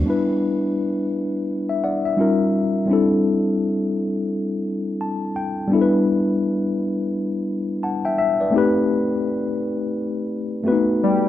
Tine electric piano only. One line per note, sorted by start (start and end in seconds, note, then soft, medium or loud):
0.03 2.12 G3 medium
0.03 2.13 B3 soft
0.03 2.14 D4 medium
0.08 2.15 E4 medium
0.08 2.16 B4 medium
1.69 1.82 E5 soft
1.84 2.04 D5 soft
1.84 2.04 F#5 soft
2.05 2.38 E5 soft
2.17 2.85 G3 medium
2.17 2.88 C#4 medium
2.17 2.89 D#4 medium
2.17 2.89 F4 medium
2.17 2.90 A#4 medium
2.86 5.65 G3 medium
2.86 5.66 C4 medium
2.86 5.67 D4 medium
2.91 5.68 E4 medium
2.91 5.69 A4 medium
5.01 5.33 A5 medium
5.36 5.69 G5 medium
5.68 8.47 G3 medium
5.68 8.48 B3 medium
5.72 8.49 D4 medium
5.72 8.50 E4 medium
5.72 5.81 A4 medium
5.81 7.84 B4 medium
7.83 8.04 F#5 soft
7.83 8.03 A5 medium
8.05 8.17 E5 medium
8.05 8.17 G5 medium
8.18 8.39 E5 medium
8.41 8.57 B4 soft
8.41 8.74 D5 soft
8.51 10.60 A3 medium
8.51 10.60 C4 medium
8.51 10.61 D#4 medium
8.56 10.62 G4 medium
8.56 10.63 B4 medium
10.64 11.29 A3 medium
10.64 11.29 B3 medium
10.64 10.73 C4 soft
10.64 11.29 F#4 medium
10.64 11.29 B4 medium
10.72 11.29 D#4 medium